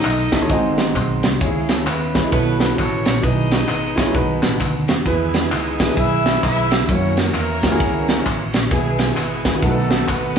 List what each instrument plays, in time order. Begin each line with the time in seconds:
Already playing: grand piano A2, horn section D#4 A4 D#5
0.04 fingered electric bass B1, clap, ride bell, tambourine
0.32 grand piano E4 A4 E5, kick, snare, ride bell, tambourine
0.41 grand piano E4 A4 C#5
0.49 fingered electric bass G#1, grand piano G#2 G#3 C4 D#4 F#4 D#5 G#5, kick, ride bell, tambourine
0.78 snare, ride bell, tambourine
0.96 fingered electric bass B1, grand piano C6, kick, clap, ride bell, tambourine
1.23 fingered electric bass C2, snare, ride bell, tambourine
1.41 fingered electric bass C#2, grand piano C#3 D#4 G#4 C#5, horn section G#3 C#4 E4 G#4, kick, ride bell, tambourine
1.46 grand piano E4
1.69 horn section A3 A4, snare, ride bell, tambourine
1.86 fingered electric bass D#2, horn section B3 E4 G#4 B4, clap, ride bell, tambourine
2.14 grand piano E4 G#4 C#5, kick, snare, ride bell, tambourine
2.24 grand piano E4 G#4 D#5
2.31 fingered electric bass B1, grand piano B2 B3 E4 F#4 A4 C#5, horn section B3 E4 F#4 B4, kick, ride bell, tambourine
2.59 horn section B3 B4, snare, ride bell, tambourine
2.75 fingered electric bass A1, horn section A3 C#4 E4 A4 C#5, kick, ride bell
2.80 clap, tambourine
3.05 fingered electric bass A#1, snare, ride bell, tambourine
3.21 fingered electric bass B1, grand piano B2 E4 G#4 B4, horn section D#4 G#4 B4 D#5, kick, ride bell, tambourine
3.51 snare, ride bell, tambourine
3.68 fingered electric bass G#1, clap, ride bell, tambourine
3.95 grand piano E4 G#4 C#5, kick, snare, ride bell, tambourine
4.06 grand piano E4 G#4 C#5
4.14 fingered electric bass B1, grand piano B2 D#4 F#4 B4, kick, ride bell, tambourine
4.43 fingered electric bass A1, snare, clap, ride bell, tambourine
4.60 fingered electric bass D2, kick, clap, ride bell, tambourine
4.88 fingered electric bass D#2, snare, ride bell, tambourine
5.06 fingered electric bass E2, grand piano E3 E4 G#4 B4, tonewheel organ E3 G#3 B3 G#4, horn section B3 E4 G#4 B4, kick, ride bell, tambourine
5.34 snare, ride bell, tambourine
5.51 fingered electric bass C#2, horn section D#4 G#4 B4 D#5, clap, ride bell, tambourine
5.80 grand piano E4 G#4 B4, kick, snare, ride bell, tambourine
5.89 grand piano E4 G#4 B4
5.97 fingered electric bass B1, horn section E4 G#4 B4 E5, kick, ride bell, tambourine
6.26 snare, ride bell, tambourine
6.43 fingered electric bass B1, horn section E4 G#4 B4 E5, kick, clap, ride bell, tambourine
6.71 snare, ride bell, tambourine
6.89 fingered electric bass F#2, grand piano A#3 C#4 E4 F#4 C#5, tonewheel organ A#3 C#4 F#4, horn section C#4 E4 A#4 C#5, kick, ride bell, tambourine
7.17 horn section A#3 C#4 E4 A#4, snare, ride bell, tambourine
7.34 fingered electric bass E2, clap, ride bell, tambourine
7.63 grand piano A#3 C#4 E4 F#4 C#5, kick, snare, ride bell, tambourine
7.71 grand piano A#3 C#4 E4 F#4 G#4
7.80 fingered electric bass C#2, kick, ride bell, tambourine
8.09 snare, ride bell, tambourine
8.26 fingered electric bass A1, kick, clap, ride bell, tambourine
8.53 fingered electric bass A#1, snare, ride bell, tambourine
8.71 fingered electric bass B1, grand piano B2 B3 E4 G#4, tonewheel organ E3 G#3 B3 G#4, horn section G#3 B3 E4 G#4, kick, ride bell, tambourine
8.99 snare, ride bell, tambourine
9.17 fingered electric bass G#1, horn section B3 E4 G#4 B4, clap, ride bell, tambourine
9.45 grand piano B3 E4 G#4, kick, snare, ride bell, tambourine
9.54 grand piano B3 E4 F#4
9.62 fingered electric bass B1, grand piano B2 A3 B3 D#4 F#4 A4, tonewheel organ D#3 A3 F#4, horn section A3 D#4 F#4 A4, kick, ride bell, tambourine
9.70 grand piano B4
9.91 snare, ride bell, tambourine
10.08 fingered electric bass G#1, horn section B3 B4, kick, clap, ride bell, tambourine
10.36 ride bell